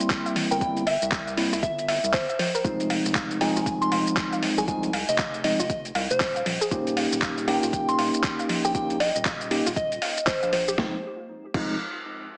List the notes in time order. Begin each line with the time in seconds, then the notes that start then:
Already playing: G3 A#3 C4 E4
0.00 closed hi-hat, shaker
0.10 kick, clap, closed hi-hat, shaker
0.26 E5, closed hi-hat, shaker
0.36 E3, open hi-hat
0.51 G1 A#4 G5, shaker
0.61 G3 A#3 C4 E4 G5, kick, closed hi-hat, shaker
0.77 closed hi-hat, shaker
0.86 E5, open hi-hat
1.02 C2, closed hi-hat, shaker
1.12 E5, kick, clap, closed hi-hat, shaker
1.28 closed hi-hat, shaker
1.37 G3 A#3 C4 E4, open hi-hat
1.53 C2 E4, open hi-hat, shaker
1.63 G1 E5, kick, closed hi-hat, shaker
1.79 closed hi-hat, shaker
1.88 E5, open hi-hat
2.04 C2, closed hi-hat, shaker
2.13 G1 C5, kick, clap, open hi-hat, shaker
2.29 E5, closed hi-hat, shaker
2.39 F3 C5, open hi-hat
2.55 A#4, shaker
2.64 F1 F3 G#3 C4 D#4 F4, kick, closed hi-hat, shaker
2.80 closed hi-hat, shaker
2.90 F5, open hi-hat
3.05 F1, shaker
3.15 F5, kick, clap, closed hi-hat, shaker
3.31 closed hi-hat, shaker
3.41 F3 G#3 C4 D#4 G#5, open hi-hat
3.56 F1 F4, shaker
3.66 kick, closed hi-hat, shaker
3.82 C6, closed hi-hat, shaker
3.92 F1 F5 C6, open hi-hat
4.07 closed hi-hat, shaker
4.17 kick, clap, closed hi-hat, shaker
4.33 F5, closed hi-hat, shaker
4.42 F3, open hi-hat
4.58 C2 G#4 G#5, shaker
4.68 F3 G#3 C4 D#4 F4 G#5, kick, closed hi-hat, shaker
4.83 closed hi-hat, shaker
4.93 F5, open hi-hat
5.09 F1 D#5, shaker
5.18 F5, kick, clap, closed hi-hat, shaker
5.34 closed hi-hat, shaker
5.44 F3 G#3 C4 D#4 D#5, open hi-hat
5.60 F1 F4 D#5, shaker
5.70 kick, closed hi-hat, shaker
5.85 closed hi-hat, shaker
5.95 C2 F5, open hi-hat
6.11 F1 C5, closed hi-hat, shaker
6.20 D#1, kick, clap, open hi-hat, shaker
6.36 F5, closed hi-hat, shaker
6.46 D#1 F3, open hi-hat
6.61 G#4, shaker
6.71 D#1 A#3 C#4 D#4 F4 G4, kick, closed hi-hat, shaker
6.87 closed hi-hat, shaker
6.97 F5, open hi-hat
7.12 D#1, shaker
7.22 F5, kick, clap, closed hi-hat, shaker
7.38 closed hi-hat, shaker
7.48 A#3 C#4 D#4 G4 G5, open hi-hat
7.63 D#1 F4, shaker
7.73 kick, closed hi-hat, shaker
7.89 C6, closed hi-hat, shaker
7.98 D#1 F5 C6, open hi-hat
8.14 closed hi-hat, shaker
8.24 kick, clap, closed hi-hat, shaker
8.39 F5, closed hi-hat, shaker
8.49 F3, open hi-hat
8.64 A#1 G4 G5, shaker
8.75 A#3 C#4 D#4 F4 G4 G5, kick, closed hi-hat, shaker
8.90 closed hi-hat, shaker
9.00 D#5 F5, open hi-hat
9.16 D#1, closed hi-hat, shaker
9.25 F5, kick, clap, closed hi-hat, shaker
9.41 closed hi-hat, shaker
9.51 A#3 C#4 D#4 G4, open hi-hat
9.66 D#1 F4, open hi-hat, shaker
9.76 D#5, kick, closed hi-hat, shaker
9.92 closed hi-hat, shaker
10.02 F5, open hi-hat
10.17 closed hi-hat, shaker
10.27 C5, kick, clap, open hi-hat, shaker
10.43 A#1 F5, closed hi-hat, shaker
10.53 F3 C5, open hi-hat
10.68 G4, shaker
10.78 F1 F3 G#3 C4 D#4 F4, kick, snare
11.54 F1 F3 G#3 C4 D#4 F4, kick, crash